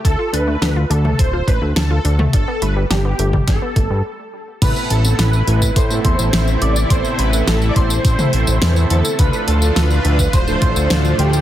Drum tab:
CC |----------------|----------------|x---------------|----------------|
HH |x-x-x-x-x-x-x-x-|x-x-x-x-x-x-----|x-x-x-x-x-x-x-x-|x-x-x-x-x-x-x-x-|
TB |----------------|----------------|xx-xxx-xxx-xxx-x|xx-xxx-xxx-xxx-x|
SD |----o-------o---|----o---o-------|----o-------o---|----o-------o---|
T2 |-------o-------o|-------o--------|o---------------|---------o------|
BD |o-------o-o-----|o------oo-o-----|o------oo-o-----|o-----o-o-------|

CC |----------------|
HH |x-x-x-x-x-x-x-x-|
TB |xx-xxx-xxx-xxx-x|
SD |----o-------o---|
T2 |o---------------|
BD |o------oo-o-----|